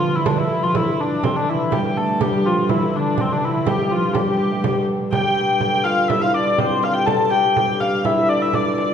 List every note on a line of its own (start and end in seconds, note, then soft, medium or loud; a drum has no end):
0.00 1.21 G2 medium
0.00 0.21 D3 medium
0.00 1.21 D3 medium
0.00 0.21 F3 medium
0.00 1.39 A3 medium
0.00 0.16 F4 medium
0.00 frame drum soft
0.15 0.33 E3 medium
0.15 0.27 E4 medium
0.26 0.45 D3 medium
0.26 0.38 D4 medium
0.26 frame drum medium
0.38 0.69 E3 medium
0.38 0.63 E4 medium
0.51 frame drum soft
0.63 0.80 F3 medium
0.63 0.76 F4 medium
0.74 1.42 E3 medium
0.74 1.01 E4 medium
0.74 frame drum medium
1.00 1.24 D4 medium
1.00 frame drum soft
1.23 5.11 G2 medium
1.23 1.34 C3 medium
1.23 1.42 C3 medium
1.23 5.11 D3 medium
1.23 1.37 C4 medium
1.23 frame drum medium
1.36 1.47 D3 medium
1.36 1.53 D3 medium
1.36 1.50 D4 medium
1.47 2.52 E3 medium
1.47 1.74 E3 medium
1.47 1.73 E4 medium
1.72 1.96 G3 medium
1.72 1.84 G3 medium
1.72 1.86 G4 medium
1.72 frame drum medium
1.85 2.21 G3 medium
1.85 1.97 G4 medium
1.97 2.19 A3 medium
1.97 2.22 A4 medium
1.97 frame drum soft
2.21 2.43 G3 medium
2.21 2.52 G3 medium
2.21 2.33 G4 medium
2.21 frame drum medium
2.33 2.47 G4 medium
2.45 2.68 F3 medium
2.45 2.76 F3 medium
2.45 2.70 F4 medium
2.69 2.96 E3 medium
2.69 2.99 E3 medium
2.69 2.96 E4 medium
2.69 frame drum medium
2.93 3.25 D3 medium
2.93 3.18 D3 medium
2.93 3.21 D4 medium
2.93 frame drum soft
3.18 3.68 C3 medium
3.18 3.38 C3 medium
3.18 3.33 C4 medium
3.18 frame drum medium
3.32 3.50 D3 medium
3.32 3.45 D4 medium
3.44 3.96 E3 medium
3.44 3.68 E4 medium
3.67 3.79 G3 medium
3.67 3.80 G4 medium
3.67 frame drum medium
3.79 3.96 G3 medium
3.79 3.92 G3 medium
3.79 3.92 G4 medium
3.90 4.03 F3 medium
3.90 4.03 F4 medium
3.90 frame drum soft
4.03 4.15 F3 medium
4.03 4.22 F3 medium
4.03 4.15 F4 medium
4.13 4.53 G3 medium
4.13 6.27 G3 medium
4.13 4.84 G4 medium
4.13 frame drum medium
4.40 frame drum soft
4.51 4.62 A3 medium
4.60 4.71 G3 medium
4.60 frame drum medium
4.69 4.79 F3 medium
4.78 4.88 G3 medium
5.11 8.94 G2 medium
5.11 8.94 D3 medium
5.11 5.86 G4 medium
5.11 6.94 G4 medium
5.11 5.84 G5 medium
5.11 frame drum medium
5.37 frame drum soft
5.61 frame drum medium
5.84 6.11 F4 medium
5.84 6.10 F5 medium
5.84 frame drum medium
6.08 6.27 E4 medium
6.08 6.22 E4 medium
6.08 6.22 E5 medium
6.08 frame drum medium
6.21 6.82 F4 medium
6.21 6.33 F4 medium
6.21 6.34 F5 medium
6.34 6.57 D4 medium
6.34 8.30 D4 medium
6.34 6.59 D5 medium
6.34 frame drum soft
6.57 7.03 C4 medium
6.57 8.94 C4 medium
6.57 6.84 C5 medium
6.57 frame drum medium
6.82 8.11 F4 medium
6.82 6.96 F5 medium
6.82 frame drum medium
6.93 7.31 G4 medium
6.93 7.07 A4 medium
6.93 7.06 G5 medium
7.06 7.30 A4 medium
7.06 8.94 A4 medium
7.06 7.31 A5 medium
7.06 frame drum medium
7.31 8.06 G4 medium
7.31 8.94 G4 medium
7.31 7.80 G5 loud
7.31 frame drum soft
7.57 frame drum medium
7.80 8.05 F5 medium
7.80 frame drum medium
8.04 8.31 E4 medium
8.04 8.43 E4 medium
8.04 8.30 E5 medium
8.04 frame drum medium
8.29 8.41 D4 medium
8.29 8.54 D4 medium
8.29 8.42 D5 medium
8.41 8.53 E4 medium
8.41 8.86 E4 medium
8.41 8.55 E5 medium
8.53 8.94 D4 medium
8.53 8.94 D5 medium
8.53 frame drum medium
8.78 8.94 F4 medium
8.78 frame drum medium